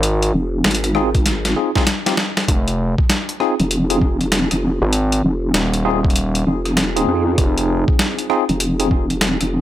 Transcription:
0.00 0.32 G#1 loud
0.00 closed hi-hat medium
0.22 closed hi-hat medium
0.34 0.63 F1 loud
0.64 1.55 G#1 loud
0.64 snare loud
0.64 closed hi-hat soft
0.71 closed hi-hat medium
0.75 closed hi-hat medium
0.84 cross-stick soft
0.84 closed hi-hat medium
0.95 1.09 C4 loud
0.95 1.09 D#4 medium
0.95 1.09 F4 medium
0.95 1.09 G#4 loud
0.95 cross-stick medium
1.15 kick loud
1.15 closed hi-hat soft
1.26 snare medium
1.26 closed hi-hat medium
1.45 snare medium
1.45 closed hi-hat medium
1.56 1.70 C4 medium
1.56 1.70 D#4 medium
1.56 1.70 F4 medium
1.56 1.70 G#4 medium
1.75 1.84 C4 medium
1.75 1.84 D#4 medium
1.75 1.84 F4 medium
1.75 1.84 G#4 loud
1.75 kick medium
1.75 snare medium
1.87 snare medium
1.87 closed hi-hat medium
2.06 2.14 C4 medium
2.06 2.14 D#4 medium
2.06 2.14 F4 medium
2.06 2.14 G4 loud
2.06 snare medium
2.06 closed hi-hat medium
2.17 snare medium
2.37 snare medium
2.37 closed hi-hat soft
2.48 2.95 F1 loud
2.48 kick loud
2.48 closed hi-hat medium
2.68 closed hi-hat medium
2.98 kick loud
3.10 snare loud
3.10 closed hi-hat medium
3.29 closed hi-hat medium
3.40 3.54 C4 loud
3.40 3.54 D#4 medium
3.40 3.54 F4 medium
3.40 3.54 G#4 loud
3.40 cross-stick medium
3.60 4.48 F1 loud
3.60 closed hi-hat soft
3.71 closed hi-hat medium
3.90 3.98 C4 medium
3.90 3.98 D#4 medium
3.90 3.98 F4 medium
3.90 3.98 G#4 medium
3.90 closed hi-hat medium
4.02 kick medium
4.21 closed hi-hat soft
4.32 snare loud
4.32 closed hi-hat medium
4.51 4.79 F1 loud
4.51 cross-stick soft
4.51 closed hi-hat medium
4.82 5.22 G#1 loud
4.93 closed hi-hat medium
5.12 closed hi-hat medium
5.24 5.53 F1 loud
5.54 6.44 D#1 loud
5.54 snare loud
5.54 closed hi-hat medium
5.74 closed hi-hat medium
5.85 5.99 C4 loud
5.85 5.99 D#4 medium
5.85 5.99 F4 medium
5.85 5.99 G#4 loud
6.05 kick loud
6.10 closed hi-hat soft
6.16 closed hi-hat medium
6.35 closed hi-hat medium
6.47 6.89 F1 loud
6.65 cross-stick soft
6.65 closed hi-hat soft
6.77 snare loud
6.77 closed hi-hat medium
6.89 7.06 E1 loud
6.96 8.27 C4 medium
6.96 8.27 D#4 medium
6.96 8.27 F4 medium
6.96 8.27 G#4 loud
6.96 closed hi-hat medium
7.08 7.36 F2 loud
7.38 7.85 F1 loud
7.38 kick loud
7.38 closed hi-hat medium
7.58 closed hi-hat medium
7.88 kick loud
7.99 snare loud
7.99 closed hi-hat medium
8.19 closed hi-hat medium
8.30 8.43 C4 loud
8.30 8.43 D#4 medium
8.30 8.43 F4 medium
8.30 8.43 G#4 loud
8.30 cross-stick medium
8.49 9.38 F1 loud
8.49 closed hi-hat soft
8.60 closed hi-hat medium
8.80 8.88 C4 medium
8.80 8.88 D#4 medium
8.80 8.88 F4 medium
8.80 8.88 G#4 medium
8.80 closed hi-hat medium
8.91 kick medium
9.10 closed hi-hat soft
9.21 snare loud
9.21 closed hi-hat medium
9.41 9.61 F1 loud
9.41 cross-stick soft
9.41 closed hi-hat medium

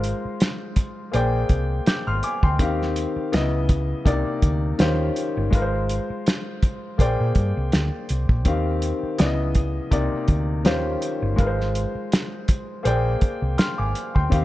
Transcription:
0.00 0.12 G#1 medium
0.00 1.09 G#3 medium
0.00 1.10 F4 medium
0.00 1.11 A#4 medium
0.00 1.12 C5 medium
0.00 closed hi-hat medium
0.25 muted fingered electric bass stroke soft
0.40 snare medium
0.40 closed hi-hat medium
0.76 kick medium
0.76 closed hi-hat medium
1.12 1.43 A#1 medium
1.12 2.56 A#3 medium
1.12 2.56 G#4 medium
1.12 2.57 C5 medium
1.12 2.58 D5 medium
1.12 closed hi-hat medium
1.16 1.86 G5 medium
1.49 1.79 C2 medium
1.49 kick medium
1.49 closed hi-hat medium
1.86 2.06 D6 soft
1.86 2.06 G6 medium
1.86 muted fingered electric bass stroke soft
1.86 snare medium
1.86 closed hi-hat medium
2.07 2.20 G#1 medium
2.07 2.23 C6 medium
2.07 2.23 F6 medium
2.23 2.42 G#5 medium
2.23 2.42 D6 medium
2.23 closed hi-hat medium
2.43 2.60 D2 medium
2.43 2.78 G5 soft
2.43 2.78 C6 medium
2.43 kick medium
2.59 3.05 D#2 medium
2.59 3.33 D#3 medium
2.59 3.33 C4 medium
2.59 3.33 G4 medium
2.59 3.34 F5 medium
2.59 kick medium
2.59 closed hi-hat medium
2.82 snare soft
2.96 closed hi-hat medium
3.16 muted fingered electric bass stroke soft
3.32 3.92 C#2 medium
3.32 4.06 C#3 medium
3.32 4.06 B3 medium
3.32 4.06 E4 medium
3.32 4.07 D#5 medium
3.32 snare loud
3.32 closed hi-hat medium
3.69 kick medium
3.69 closed hi-hat medium
4.05 4.22 C2 medium
4.05 4.79 C3 medium
4.05 4.79 A#3 medium
4.05 4.79 D#4 medium
4.05 4.80 D5 medium
4.05 kick medium
4.05 closed hi-hat medium
4.27 muted fingered electric bass stroke soft
4.42 4.72 D2 medium
4.42 kick medium
4.42 closed hi-hat medium
4.79 5.09 D#2 medium
4.79 5.52 D#3 medium
4.79 5.53 C#4 medium
4.79 5.51 F4 medium
4.79 5.53 G4 medium
4.79 5.53 C5 medium
4.79 snare medium
4.79 closed hi-hat medium
5.16 closed hi-hat medium
5.37 5.50 G1 medium
5.50 5.98 G#1 medium
5.50 6.95 G#3 medium
5.50 6.96 F4 medium
5.50 6.97 A#4 medium
5.50 kick medium
5.50 closed hi-hat medium
5.55 5.61 B4 medium
5.62 6.99 C5 medium
5.89 closed hi-hat medium
6.10 muted fingered electric bass stroke soft
6.26 snare medium
6.26 closed hi-hat medium
6.63 kick medium
6.63 closed hi-hat medium
6.98 7.15 A#1 medium
6.98 8.42 A#3 medium
6.98 8.42 G#4 medium
6.98 8.43 C5 medium
6.98 8.44 D5 medium
6.98 8.44 G5 medium
6.98 kick medium
6.98 closed hi-hat medium
7.20 7.33 A#2 medium
7.35 7.52 G2 medium
7.35 kick medium
7.35 closed hi-hat medium
7.57 7.70 C2 medium
7.72 7.89 D2 medium
7.72 snare medium
7.72 closed hi-hat medium
8.09 8.26 C2 medium
8.09 closed hi-hat medium
8.29 8.46 A#1 medium
8.29 kick medium
8.45 8.91 D#2 medium
8.45 9.19 D#3 medium
8.45 9.19 C4 medium
8.45 9.19 G4 medium
8.45 9.20 F5 medium
8.45 kick loud
8.45 closed hi-hat medium
8.82 closed hi-hat medium
9.03 muted fingered electric bass stroke soft
9.18 9.79 C#2 medium
9.18 9.92 C#3 medium
9.18 9.92 B3 medium
9.18 9.92 E4 medium
9.18 9.27 D5 medium
9.18 snare medium
9.18 closed hi-hat medium
9.26 9.96 D#5 medium
9.55 kick medium
9.55 closed hi-hat medium
9.91 10.08 C2 medium
9.91 10.65 C3 medium
9.91 10.65 A#3 medium
9.91 10.65 D#4 medium
9.91 10.66 D5 medium
9.91 kick medium
9.91 closed hi-hat medium
10.13 muted fingered electric bass stroke soft
10.28 10.66 D2 medium
10.28 kick medium
10.28 closed hi-hat medium
10.64 10.95 D#2 medium
10.64 11.38 D#3 medium
10.64 11.38 C#4 medium
10.64 11.36 F4 medium
10.64 11.39 G4 medium
10.64 11.39 C5 medium
10.64 snare medium
10.64 closed hi-hat medium
11.02 closed hi-hat medium
11.22 11.36 G1 medium
11.36 11.84 G#1 medium
11.36 12.81 G#3 medium
11.36 12.82 F4 medium
11.36 12.82 A#4 medium
11.36 kick medium
11.36 closed hi-hat medium
11.40 11.47 B4 medium
11.47 12.83 C5 medium
11.61 snare soft
11.75 closed hi-hat medium
11.95 muted fingered electric bass stroke soft
12.12 snare loud
12.12 closed hi-hat medium
12.48 kick medium
12.48 closed hi-hat medium
12.83 13.15 A#1 medium
12.83 14.28 A#3 medium
12.83 14.28 G#4 medium
12.83 14.29 C5 medium
12.83 14.29 D5 medium
12.83 closed hi-hat medium
12.87 13.58 G5 medium
13.21 muted fingered electric bass stroke soft
13.21 kick medium
13.21 closed hi-hat medium
13.42 13.56 C2 medium
13.58 13.77 C6 soft
13.58 13.77 F6 medium
13.58 snare medium
13.58 closed hi-hat medium
13.78 13.92 G#1 medium
13.78 14.13 G#5 soft
13.78 14.13 D6 medium
13.95 closed hi-hat medium
14.15 14.29 D2 medium
14.15 14.45 G5 soft
14.15 14.45 C6 medium
14.15 kick medium
14.30 14.45 D#2 loud
14.30 14.45 D#3 medium
14.30 14.45 C4 medium
14.30 14.45 G4 medium
14.30 14.45 F5 medium
14.30 kick loud
14.30 closed hi-hat medium

